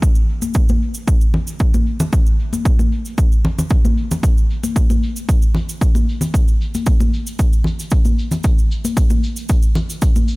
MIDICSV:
0, 0, Header, 1, 2, 480
1, 0, Start_track
1, 0, Tempo, 526316
1, 20, Time_signature, 4, 2, 24, 8
1, 9449, End_track
2, 0, Start_track
2, 0, Title_t, "Drums"
2, 21, Note_on_c, 9, 36, 115
2, 25, Note_on_c, 9, 69, 58
2, 112, Note_off_c, 9, 36, 0
2, 116, Note_off_c, 9, 69, 0
2, 138, Note_on_c, 9, 69, 33
2, 230, Note_off_c, 9, 69, 0
2, 266, Note_on_c, 9, 82, 76
2, 358, Note_off_c, 9, 82, 0
2, 381, Note_on_c, 9, 69, 69
2, 383, Note_on_c, 9, 63, 54
2, 390, Note_on_c, 9, 82, 52
2, 473, Note_off_c, 9, 69, 0
2, 474, Note_off_c, 9, 63, 0
2, 481, Note_off_c, 9, 82, 0
2, 491, Note_on_c, 9, 69, 57
2, 501, Note_on_c, 9, 36, 101
2, 582, Note_off_c, 9, 69, 0
2, 592, Note_off_c, 9, 36, 0
2, 627, Note_on_c, 9, 69, 32
2, 635, Note_on_c, 9, 63, 59
2, 718, Note_off_c, 9, 69, 0
2, 726, Note_off_c, 9, 63, 0
2, 748, Note_on_c, 9, 82, 74
2, 839, Note_off_c, 9, 82, 0
2, 859, Note_on_c, 9, 69, 63
2, 881, Note_on_c, 9, 82, 51
2, 950, Note_off_c, 9, 69, 0
2, 972, Note_off_c, 9, 82, 0
2, 980, Note_on_c, 9, 69, 59
2, 981, Note_on_c, 9, 36, 112
2, 1071, Note_off_c, 9, 69, 0
2, 1072, Note_off_c, 9, 36, 0
2, 1104, Note_on_c, 9, 69, 32
2, 1195, Note_off_c, 9, 69, 0
2, 1221, Note_on_c, 9, 64, 68
2, 1233, Note_on_c, 9, 82, 69
2, 1312, Note_off_c, 9, 64, 0
2, 1324, Note_off_c, 9, 82, 0
2, 1343, Note_on_c, 9, 69, 70
2, 1366, Note_on_c, 9, 82, 53
2, 1434, Note_off_c, 9, 69, 0
2, 1453, Note_on_c, 9, 69, 53
2, 1457, Note_off_c, 9, 82, 0
2, 1460, Note_on_c, 9, 36, 106
2, 1544, Note_off_c, 9, 69, 0
2, 1551, Note_off_c, 9, 36, 0
2, 1585, Note_on_c, 9, 69, 34
2, 1588, Note_on_c, 9, 63, 62
2, 1676, Note_off_c, 9, 69, 0
2, 1679, Note_off_c, 9, 63, 0
2, 1700, Note_on_c, 9, 82, 67
2, 1791, Note_off_c, 9, 82, 0
2, 1822, Note_on_c, 9, 69, 63
2, 1824, Note_on_c, 9, 64, 78
2, 1829, Note_on_c, 9, 82, 55
2, 1913, Note_off_c, 9, 69, 0
2, 1915, Note_off_c, 9, 64, 0
2, 1920, Note_off_c, 9, 82, 0
2, 1939, Note_on_c, 9, 69, 58
2, 1940, Note_on_c, 9, 36, 112
2, 1947, Note_on_c, 9, 82, 47
2, 2030, Note_off_c, 9, 69, 0
2, 2031, Note_off_c, 9, 36, 0
2, 2038, Note_off_c, 9, 82, 0
2, 2064, Note_on_c, 9, 69, 30
2, 2155, Note_off_c, 9, 69, 0
2, 2186, Note_on_c, 9, 82, 69
2, 2278, Note_off_c, 9, 82, 0
2, 2305, Note_on_c, 9, 63, 62
2, 2310, Note_on_c, 9, 69, 62
2, 2320, Note_on_c, 9, 82, 50
2, 2396, Note_off_c, 9, 63, 0
2, 2401, Note_off_c, 9, 69, 0
2, 2411, Note_off_c, 9, 82, 0
2, 2420, Note_on_c, 9, 36, 106
2, 2420, Note_on_c, 9, 69, 52
2, 2429, Note_on_c, 9, 82, 40
2, 2511, Note_off_c, 9, 36, 0
2, 2511, Note_off_c, 9, 69, 0
2, 2520, Note_off_c, 9, 82, 0
2, 2546, Note_on_c, 9, 63, 55
2, 2548, Note_on_c, 9, 69, 33
2, 2638, Note_off_c, 9, 63, 0
2, 2640, Note_off_c, 9, 69, 0
2, 2665, Note_on_c, 9, 82, 73
2, 2756, Note_off_c, 9, 82, 0
2, 2783, Note_on_c, 9, 69, 59
2, 2796, Note_on_c, 9, 82, 49
2, 2874, Note_off_c, 9, 69, 0
2, 2887, Note_off_c, 9, 82, 0
2, 2899, Note_on_c, 9, 69, 54
2, 2900, Note_on_c, 9, 36, 109
2, 2904, Note_on_c, 9, 82, 40
2, 2990, Note_off_c, 9, 69, 0
2, 2991, Note_off_c, 9, 36, 0
2, 2995, Note_off_c, 9, 82, 0
2, 3028, Note_on_c, 9, 69, 33
2, 3119, Note_off_c, 9, 69, 0
2, 3144, Note_on_c, 9, 64, 74
2, 3145, Note_on_c, 9, 82, 70
2, 3235, Note_off_c, 9, 64, 0
2, 3237, Note_off_c, 9, 82, 0
2, 3270, Note_on_c, 9, 64, 75
2, 3271, Note_on_c, 9, 69, 69
2, 3274, Note_on_c, 9, 82, 50
2, 3362, Note_off_c, 9, 64, 0
2, 3362, Note_off_c, 9, 69, 0
2, 3365, Note_off_c, 9, 82, 0
2, 3371, Note_on_c, 9, 69, 57
2, 3380, Note_on_c, 9, 36, 106
2, 3393, Note_on_c, 9, 82, 38
2, 3462, Note_off_c, 9, 69, 0
2, 3471, Note_off_c, 9, 36, 0
2, 3484, Note_off_c, 9, 82, 0
2, 3509, Note_on_c, 9, 63, 63
2, 3511, Note_on_c, 9, 69, 34
2, 3600, Note_off_c, 9, 63, 0
2, 3602, Note_off_c, 9, 69, 0
2, 3624, Note_on_c, 9, 82, 66
2, 3715, Note_off_c, 9, 82, 0
2, 3749, Note_on_c, 9, 69, 64
2, 3752, Note_on_c, 9, 64, 67
2, 3757, Note_on_c, 9, 82, 56
2, 3841, Note_off_c, 9, 69, 0
2, 3843, Note_off_c, 9, 64, 0
2, 3848, Note_off_c, 9, 82, 0
2, 3860, Note_on_c, 9, 36, 103
2, 3861, Note_on_c, 9, 69, 57
2, 3872, Note_on_c, 9, 82, 44
2, 3951, Note_off_c, 9, 36, 0
2, 3953, Note_off_c, 9, 69, 0
2, 3963, Note_off_c, 9, 82, 0
2, 3990, Note_on_c, 9, 69, 32
2, 4082, Note_off_c, 9, 69, 0
2, 4108, Note_on_c, 9, 82, 74
2, 4200, Note_off_c, 9, 82, 0
2, 4227, Note_on_c, 9, 63, 57
2, 4228, Note_on_c, 9, 69, 67
2, 4234, Note_on_c, 9, 82, 52
2, 4318, Note_off_c, 9, 63, 0
2, 4319, Note_off_c, 9, 69, 0
2, 4326, Note_off_c, 9, 82, 0
2, 4340, Note_on_c, 9, 36, 98
2, 4342, Note_on_c, 9, 69, 60
2, 4347, Note_on_c, 9, 82, 40
2, 4432, Note_off_c, 9, 36, 0
2, 4433, Note_off_c, 9, 69, 0
2, 4438, Note_off_c, 9, 82, 0
2, 4469, Note_on_c, 9, 63, 58
2, 4471, Note_on_c, 9, 69, 31
2, 4560, Note_off_c, 9, 63, 0
2, 4562, Note_off_c, 9, 69, 0
2, 4588, Note_on_c, 9, 82, 75
2, 4679, Note_off_c, 9, 82, 0
2, 4709, Note_on_c, 9, 69, 65
2, 4713, Note_on_c, 9, 82, 50
2, 4800, Note_off_c, 9, 69, 0
2, 4804, Note_off_c, 9, 82, 0
2, 4821, Note_on_c, 9, 36, 104
2, 4822, Note_on_c, 9, 69, 53
2, 4829, Note_on_c, 9, 82, 41
2, 4913, Note_off_c, 9, 36, 0
2, 4914, Note_off_c, 9, 69, 0
2, 4920, Note_off_c, 9, 82, 0
2, 4944, Note_on_c, 9, 69, 34
2, 5035, Note_off_c, 9, 69, 0
2, 5057, Note_on_c, 9, 64, 60
2, 5066, Note_on_c, 9, 82, 82
2, 5149, Note_off_c, 9, 64, 0
2, 5157, Note_off_c, 9, 82, 0
2, 5189, Note_on_c, 9, 82, 50
2, 5190, Note_on_c, 9, 69, 68
2, 5280, Note_off_c, 9, 82, 0
2, 5281, Note_off_c, 9, 69, 0
2, 5302, Note_on_c, 9, 36, 100
2, 5302, Note_on_c, 9, 69, 52
2, 5306, Note_on_c, 9, 82, 47
2, 5393, Note_off_c, 9, 36, 0
2, 5394, Note_off_c, 9, 69, 0
2, 5397, Note_off_c, 9, 82, 0
2, 5426, Note_on_c, 9, 63, 59
2, 5432, Note_on_c, 9, 69, 33
2, 5518, Note_off_c, 9, 63, 0
2, 5524, Note_off_c, 9, 69, 0
2, 5551, Note_on_c, 9, 82, 74
2, 5643, Note_off_c, 9, 82, 0
2, 5663, Note_on_c, 9, 64, 61
2, 5666, Note_on_c, 9, 69, 69
2, 5676, Note_on_c, 9, 82, 53
2, 5754, Note_off_c, 9, 64, 0
2, 5757, Note_off_c, 9, 69, 0
2, 5768, Note_off_c, 9, 82, 0
2, 5781, Note_on_c, 9, 36, 105
2, 5783, Note_on_c, 9, 82, 47
2, 5785, Note_on_c, 9, 69, 60
2, 5873, Note_off_c, 9, 36, 0
2, 5874, Note_off_c, 9, 82, 0
2, 5877, Note_off_c, 9, 69, 0
2, 5910, Note_on_c, 9, 69, 31
2, 6001, Note_off_c, 9, 69, 0
2, 6030, Note_on_c, 9, 82, 68
2, 6121, Note_off_c, 9, 82, 0
2, 6150, Note_on_c, 9, 69, 69
2, 6154, Note_on_c, 9, 63, 54
2, 6156, Note_on_c, 9, 82, 52
2, 6241, Note_off_c, 9, 69, 0
2, 6245, Note_off_c, 9, 63, 0
2, 6247, Note_off_c, 9, 82, 0
2, 6256, Note_on_c, 9, 82, 46
2, 6257, Note_on_c, 9, 69, 57
2, 6261, Note_on_c, 9, 36, 100
2, 6347, Note_off_c, 9, 82, 0
2, 6348, Note_off_c, 9, 69, 0
2, 6352, Note_off_c, 9, 36, 0
2, 6387, Note_on_c, 9, 63, 55
2, 6388, Note_on_c, 9, 69, 35
2, 6479, Note_off_c, 9, 63, 0
2, 6479, Note_off_c, 9, 69, 0
2, 6508, Note_on_c, 9, 82, 80
2, 6599, Note_off_c, 9, 82, 0
2, 6627, Note_on_c, 9, 69, 70
2, 6635, Note_on_c, 9, 82, 50
2, 6718, Note_off_c, 9, 69, 0
2, 6726, Note_off_c, 9, 82, 0
2, 6739, Note_on_c, 9, 69, 56
2, 6741, Note_on_c, 9, 36, 103
2, 6743, Note_on_c, 9, 82, 46
2, 6830, Note_off_c, 9, 69, 0
2, 6832, Note_off_c, 9, 36, 0
2, 6834, Note_off_c, 9, 82, 0
2, 6866, Note_on_c, 9, 69, 35
2, 6957, Note_off_c, 9, 69, 0
2, 6970, Note_on_c, 9, 64, 61
2, 6993, Note_on_c, 9, 82, 85
2, 7062, Note_off_c, 9, 64, 0
2, 7084, Note_off_c, 9, 82, 0
2, 7107, Note_on_c, 9, 69, 65
2, 7115, Note_on_c, 9, 82, 57
2, 7198, Note_off_c, 9, 69, 0
2, 7206, Note_off_c, 9, 82, 0
2, 7208, Note_on_c, 9, 69, 58
2, 7220, Note_on_c, 9, 36, 100
2, 7222, Note_on_c, 9, 82, 44
2, 7299, Note_off_c, 9, 69, 0
2, 7311, Note_off_c, 9, 36, 0
2, 7313, Note_off_c, 9, 82, 0
2, 7342, Note_on_c, 9, 63, 54
2, 7342, Note_on_c, 9, 69, 35
2, 7433, Note_off_c, 9, 63, 0
2, 7433, Note_off_c, 9, 69, 0
2, 7466, Note_on_c, 9, 82, 68
2, 7557, Note_off_c, 9, 82, 0
2, 7581, Note_on_c, 9, 69, 68
2, 7582, Note_on_c, 9, 64, 61
2, 7591, Note_on_c, 9, 82, 55
2, 7672, Note_off_c, 9, 69, 0
2, 7674, Note_off_c, 9, 64, 0
2, 7682, Note_off_c, 9, 82, 0
2, 7692, Note_on_c, 9, 69, 63
2, 7699, Note_on_c, 9, 36, 102
2, 7706, Note_on_c, 9, 82, 44
2, 7783, Note_off_c, 9, 69, 0
2, 7791, Note_off_c, 9, 36, 0
2, 7797, Note_off_c, 9, 82, 0
2, 7830, Note_on_c, 9, 69, 34
2, 7921, Note_off_c, 9, 69, 0
2, 7946, Note_on_c, 9, 82, 82
2, 8037, Note_off_c, 9, 82, 0
2, 8068, Note_on_c, 9, 63, 53
2, 8068, Note_on_c, 9, 69, 67
2, 8071, Note_on_c, 9, 82, 59
2, 8159, Note_off_c, 9, 63, 0
2, 8159, Note_off_c, 9, 69, 0
2, 8163, Note_off_c, 9, 82, 0
2, 8179, Note_on_c, 9, 36, 96
2, 8179, Note_on_c, 9, 69, 64
2, 8179, Note_on_c, 9, 82, 49
2, 8270, Note_off_c, 9, 36, 0
2, 8271, Note_off_c, 9, 69, 0
2, 8271, Note_off_c, 9, 82, 0
2, 8299, Note_on_c, 9, 69, 35
2, 8302, Note_on_c, 9, 63, 56
2, 8390, Note_off_c, 9, 69, 0
2, 8393, Note_off_c, 9, 63, 0
2, 8423, Note_on_c, 9, 82, 81
2, 8514, Note_off_c, 9, 82, 0
2, 8540, Note_on_c, 9, 69, 67
2, 8554, Note_on_c, 9, 82, 52
2, 8631, Note_off_c, 9, 69, 0
2, 8645, Note_off_c, 9, 82, 0
2, 8653, Note_on_c, 9, 69, 59
2, 8659, Note_on_c, 9, 36, 100
2, 8671, Note_on_c, 9, 82, 45
2, 8744, Note_off_c, 9, 69, 0
2, 8751, Note_off_c, 9, 36, 0
2, 8762, Note_off_c, 9, 82, 0
2, 8776, Note_on_c, 9, 69, 36
2, 8867, Note_off_c, 9, 69, 0
2, 8895, Note_on_c, 9, 64, 67
2, 8897, Note_on_c, 9, 82, 82
2, 8986, Note_off_c, 9, 64, 0
2, 8988, Note_off_c, 9, 82, 0
2, 9026, Note_on_c, 9, 69, 70
2, 9027, Note_on_c, 9, 82, 55
2, 9117, Note_off_c, 9, 69, 0
2, 9118, Note_off_c, 9, 82, 0
2, 9134, Note_on_c, 9, 69, 63
2, 9139, Note_on_c, 9, 36, 92
2, 9141, Note_on_c, 9, 82, 48
2, 9225, Note_off_c, 9, 69, 0
2, 9230, Note_off_c, 9, 36, 0
2, 9232, Note_off_c, 9, 82, 0
2, 9263, Note_on_c, 9, 69, 39
2, 9265, Note_on_c, 9, 63, 51
2, 9355, Note_off_c, 9, 69, 0
2, 9356, Note_off_c, 9, 63, 0
2, 9376, Note_on_c, 9, 82, 76
2, 9449, Note_off_c, 9, 82, 0
2, 9449, End_track
0, 0, End_of_file